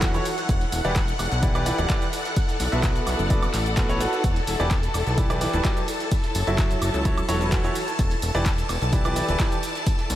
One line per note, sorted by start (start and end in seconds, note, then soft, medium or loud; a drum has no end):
0.00 0.20 E1 loud
0.00 0.13 E3 medium
0.00 10.15 E4 medium
0.00 0.13 E4 medium
0.00 0.13 F#4 medium
0.00 10.15 A4 medium
0.00 0.13 A4 medium
0.00 0.26 C#5 medium
0.00 4.25 F#5 medium
0.00 0.13 F#5 loud
0.00 kick loud
0.00 snare loud
0.00 clap loud
0.00 closed hi-hat medium
0.00 shaker soft
0.14 0.24 E3 medium
0.14 0.24 E4 medium
0.14 0.24 F#4 medium
0.14 0.24 A4 medium
0.14 0.24 C#5 loud
0.14 closed hi-hat soft
0.14 shaker soft
0.25 closed hi-hat medium
0.25 open hi-hat loud
0.25 shaker medium
0.38 snare soft
0.38 closed hi-hat soft
0.38 shaker soft
0.49 0.65 E1 loud
0.49 kick loud
0.49 closed hi-hat medium
0.49 shaker soft
0.61 snare soft
0.61 closed hi-hat soft
0.72 0.81 E1 loud
0.72 closed hi-hat medium
0.72 open hi-hat loud
0.72 shaker medium
0.85 1.13 E1 medium
0.85 0.98 E3 medium
0.85 0.98 E4 medium
0.85 0.98 G4 medium
0.85 0.98 B4 medium
0.85 0.98 D5 loud
0.85 snare soft
0.85 closed hi-hat soft
0.85 shaker soft
0.96 kick loud
0.96 snare loud
0.96 clap loud
0.96 closed hi-hat medium
0.96 shaker soft
1.08 snare medium
1.08 closed hi-hat soft
1.08 shaker soft
1.14 5.88 D5 medium
1.19 1.28 E1 loud
1.19 closed hi-hat medium
1.19 open hi-hat loud
1.19 high woodblock medium
1.19 shaker medium
1.32 1.72 B1 medium
1.32 snare soft
1.32 closed hi-hat soft
1.32 shaker soft
1.43 1.52 E3 medium
1.43 1.52 E4 medium
1.43 1.52 G4 medium
1.43 1.52 B4 medium
1.43 1.52 D5 medium
1.43 kick loud
1.43 closed hi-hat medium
1.43 shaker soft
1.55 1.64 E3 loud
1.55 1.64 E4 medium
1.55 1.64 G4 medium
1.55 1.64 B4 medium
1.55 1.64 D5 loud
1.55 closed hi-hat soft
1.55 high woodblock medium
1.55 shaker soft
1.66 1.76 E3 medium
1.66 1.76 E4 medium
1.66 1.76 G4 medium
1.66 1.76 B4 medium
1.66 1.76 D5 loud
1.66 closed hi-hat medium
1.66 open hi-hat loud
1.66 shaker medium
1.78 1.86 D1 loud
1.78 1.88 E3 medium
1.78 1.88 E4 medium
1.78 1.88 G4 medium
1.78 1.88 B4 medium
1.78 1.88 D5 medium
1.78 closed hi-hat soft
1.78 shaker soft
1.89 2.04 E3 medium
1.89 2.04 E4 medium
1.89 2.04 G4 medium
1.89 2.04 B4 medium
1.89 2.04 D5 loud
1.89 kick loud
1.89 snare loud
1.89 clap loud
1.89 closed hi-hat medium
1.89 shaker soft
2.02 closed hi-hat soft
2.02 shaker soft
2.13 closed hi-hat medium
2.13 open hi-hat loud
2.13 shaker medium
2.25 snare medium
2.25 closed hi-hat soft
2.25 shaker soft
2.36 kick loud
2.36 closed hi-hat medium
2.36 open hi-hat medium
2.36 shaker soft
2.49 snare soft
2.49 closed hi-hat soft
2.49 shaker soft
2.60 2.68 B1 loud
2.60 closed hi-hat medium
2.60 open hi-hat loud
2.60 shaker medium
2.72 3.01 B1 medium
2.72 3.27 B3 medium
2.72 3.27 F#4 medium
2.72 3.28 A4 medium
2.72 3.28 B4 medium
2.72 3.27 E5 loud
2.72 closed hi-hat soft
2.72 shaker soft
2.83 kick loud
2.83 snare loud
2.83 clap loud
2.83 closed hi-hat medium
2.83 shaker soft
2.96 closed hi-hat soft
2.96 shaker soft
3.07 3.15 B1 loud
3.07 closed hi-hat medium
3.07 open hi-hat loud
3.07 high woodblock medium
3.07 shaker medium
3.19 3.48 F#1 medium
3.19 closed hi-hat soft
3.19 shaker soft
3.30 3.44 B3 medium
3.30 3.44 F#4 medium
3.30 3.44 A4 medium
3.30 3.44 B4 medium
3.30 3.44 D5 loud
3.30 kick loud
3.30 closed hi-hat medium
3.30 shaker soft
3.43 closed hi-hat soft
3.43 high woodblock medium
3.43 shaker soft
3.54 4.06 A1 loud
3.54 snare medium
3.54 clap medium
3.54 closed hi-hat medium
3.54 open hi-hat loud
3.54 shaker medium
3.66 closed hi-hat soft
3.66 shaker soft
3.77 3.86 B3 medium
3.77 3.86 F#4 medium
3.77 3.86 A4 medium
3.77 3.86 B4 medium
3.77 3.86 F#5 medium
3.77 kick loud
3.77 snare loud
3.77 clap loud
3.77 closed hi-hat medium
3.77 shaker soft
3.89 3.99 B3 loud
3.89 3.99 F#4 medium
3.89 3.99 A4 medium
3.89 3.99 B4 medium
3.89 3.99 C#5 loud
3.89 closed hi-hat soft
3.89 shaker soft
4.00 4.22 F#4 medium
4.00 4.22 A4 medium
4.00 4.22 B4 medium
4.00 4.22 F#5 loud
4.00 closed hi-hat medium
4.00 open hi-hat loud
4.00 shaker medium
4.13 snare soft
4.13 closed hi-hat soft
4.13 shaker soft
4.24 4.40 E1 loud
4.24 10.15 A5 medium
4.24 kick loud
4.24 closed hi-hat medium
4.24 shaker soft
4.36 snare soft
4.36 closed hi-hat soft
4.47 4.56 E1 loud
4.47 closed hi-hat medium
4.47 open hi-hat loud
4.47 shaker medium
4.60 4.88 E1 medium
4.60 4.73 E3 loud
4.60 4.73 E4 medium
4.60 4.73 G4 medium
4.60 4.73 B4 medium
4.60 4.73 D5 loud
4.60 snare soft
4.60 closed hi-hat soft
4.60 shaker soft
4.71 kick loud
4.71 snare loud
4.71 clap loud
4.71 closed hi-hat medium
4.71 shaker soft
4.83 snare medium
4.83 closed hi-hat soft
4.83 shaker soft
4.94 5.03 E1 loud
4.94 closed hi-hat medium
4.94 open hi-hat loud
4.94 high woodblock medium
4.94 shaker medium
5.07 5.47 B1 medium
5.07 snare soft
5.07 closed hi-hat soft
5.07 shaker soft
5.18 5.27 E3 medium
5.18 5.27 E4 medium
5.18 5.27 G4 medium
5.18 5.27 B4 medium
5.18 5.27 D5 medium
5.18 kick loud
5.18 closed hi-hat medium
5.18 shaker soft
5.30 5.39 E3 loud
5.30 5.39 E4 medium
5.30 5.39 G4 medium
5.30 5.39 B4 medium
5.30 5.39 D5 loud
5.30 closed hi-hat soft
5.30 high woodblock medium
5.30 shaker soft
5.41 5.51 E3 medium
5.41 5.50 E4 medium
5.41 5.50 G4 medium
5.41 5.51 B4 medium
5.41 5.51 D5 loud
5.41 closed hi-hat medium
5.41 open hi-hat loud
5.41 shaker medium
5.53 5.61 D1 loud
5.53 5.63 E3 medium
5.53 5.63 E4 medium
5.53 5.63 G4 medium
5.53 5.63 B4 medium
5.53 5.63 D5 medium
5.53 closed hi-hat soft
5.53 shaker soft
5.65 5.79 F#3 loud
5.65 5.79 E4 medium
5.65 5.79 G4 medium
5.65 5.79 B4 medium
5.65 5.79 D5 loud
5.65 kick loud
5.65 snare loud
5.65 clap loud
5.65 closed hi-hat medium
5.65 shaker soft
5.77 closed hi-hat soft
5.77 shaker soft
5.88 closed hi-hat medium
5.88 open hi-hat loud
5.88 shaker medium
6.00 snare medium
6.00 closed hi-hat soft
6.00 shaker soft
6.06 7.76 C#5 medium
6.11 kick loud
6.11 closed hi-hat loud
6.11 open hi-hat medium
6.11 shaker soft
6.24 snare soft
6.24 closed hi-hat soft
6.35 6.43 F#1 loud
6.35 closed hi-hat medium
6.35 open hi-hat loud
6.35 shaker medium
6.47 6.76 F#1 medium
6.47 7.03 F#3 medium
6.47 7.03 E4 medium
6.47 7.03 F#4 medium
6.47 7.03 A4 medium
6.47 7.03 E5 loud
6.47 closed hi-hat soft
6.47 shaker soft
6.58 kick loud
6.58 snare loud
6.58 clap loud
6.58 closed hi-hat medium
6.58 shaker soft
6.71 closed hi-hat soft
6.71 shaker soft
6.82 6.90 F#1 loud
6.82 closed hi-hat medium
6.82 open hi-hat loud
6.82 high woodblock medium
6.82 shaker medium
6.94 7.23 C#2 medium
6.94 closed hi-hat soft
6.94 shaker soft
7.05 7.19 F#3 medium
7.05 7.19 E4 medium
7.05 7.19 F#4 medium
7.05 7.19 A4 medium
7.05 7.19 C#5 loud
7.05 kick loud
7.05 closed hi-hat medium
7.05 shaker soft
7.18 closed hi-hat soft
7.18 high woodblock medium
7.18 shaker soft
7.29 7.70 E1 loud
7.29 7.39 F#3 loud
7.29 7.39 E4 medium
7.29 7.39 F#4 medium
7.29 7.39 A4 medium
7.29 7.39 C#5 loud
7.29 snare medium
7.29 closed hi-hat medium
7.29 open hi-hat loud
7.29 shaker medium
7.41 7.50 F#3 medium
7.41 7.50 E4 medium
7.41 7.50 F#4 medium
7.41 7.50 A4 medium
7.41 7.50 B4 medium
7.41 closed hi-hat soft
7.41 shaker soft
7.52 7.62 E3 medium
7.52 7.63 E4 medium
7.52 7.63 F#4 medium
7.52 7.63 A4 medium
7.52 7.63 F#5 loud
7.52 kick loud
7.52 snare loud
7.52 clap loud
7.52 closed hi-hat medium
7.52 shaker soft
7.64 7.74 E3 medium
7.64 7.74 E4 medium
7.64 7.74 F#4 medium
7.64 7.74 A4 medium
7.64 7.74 C#5 loud
7.64 closed hi-hat soft
7.64 shaker soft
7.75 closed hi-hat medium
7.75 open hi-hat loud
7.75 shaker medium
7.88 snare soft
7.88 closed hi-hat soft
7.88 shaker soft
7.99 8.15 E1 loud
7.99 kick loud
7.99 closed hi-hat medium
7.99 shaker soft
8.11 snare soft
8.11 closed hi-hat soft
8.22 8.31 E1 loud
8.22 closed hi-hat medium
8.22 open hi-hat loud
8.22 shaker medium
8.35 8.63 E1 medium
8.35 8.48 E3 loud
8.35 8.48 E4 medium
8.35 8.48 G4 medium
8.35 8.48 B4 medium
8.35 8.48 D5 loud
8.35 10.15 D5 medium
8.35 snare soft
8.35 closed hi-hat soft
8.35 shaker soft
8.46 kick loud
8.46 snare loud
8.46 clap loud
8.46 closed hi-hat medium
8.46 shaker soft
8.58 snare medium
8.58 closed hi-hat soft
8.58 shaker soft
8.69 8.78 E1 loud
8.69 closed hi-hat medium
8.69 open hi-hat loud
8.69 high woodblock medium
8.69 shaker medium
8.82 9.22 B1 medium
8.82 snare soft
8.82 closed hi-hat soft
8.82 shaker soft
8.93 9.02 E3 medium
8.93 9.02 E4 medium
8.93 9.02 G4 medium
8.93 9.02 B4 medium
8.93 9.02 D5 medium
8.93 kick loud
8.93 closed hi-hat loud
8.93 closed hi-hat medium
8.93 shaker soft
9.05 9.14 E3 loud
9.05 9.14 E4 medium
9.05 9.14 G4 medium
9.05 9.14 B4 medium
9.05 9.14 D5 loud
9.05 closed hi-hat soft
9.05 high woodblock medium
9.05 shaker soft
9.16 9.26 E3 medium
9.16 9.26 E4 medium
9.16 9.26 G4 medium
9.16 9.26 B4 medium
9.16 9.26 D5 loud
9.16 closed hi-hat medium
9.16 open hi-hat loud
9.16 shaker medium
9.28 9.36 D1 loud
9.28 9.38 E3 medium
9.28 9.38 E4 medium
9.28 9.38 G4 medium
9.28 9.38 B4 medium
9.28 9.38 D5 medium
9.28 closed hi-hat soft
9.28 shaker soft
9.39 9.54 E3 loud
9.39 9.54 E4 medium
9.39 9.54 G4 medium
9.39 9.54 B4 medium
9.39 9.54 D5 loud
9.39 kick loud
9.39 snare loud
9.39 clap loud
9.39 closed hi-hat medium
9.39 closed hi-hat loud
9.39 shaker soft
9.52 closed hi-hat soft
9.52 shaker soft
9.63 closed hi-hat medium
9.63 open hi-hat loud
9.63 shaker medium
9.75 snare medium
9.75 closed hi-hat soft
9.75 shaker soft
9.86 kick loud
9.86 closed hi-hat loud
9.86 open hi-hat medium
9.86 shaker soft
9.99 snare soft
9.99 closed hi-hat soft
10.10 10.15 B1 loud
10.10 closed hi-hat medium
10.10 open hi-hat loud
10.10 shaker medium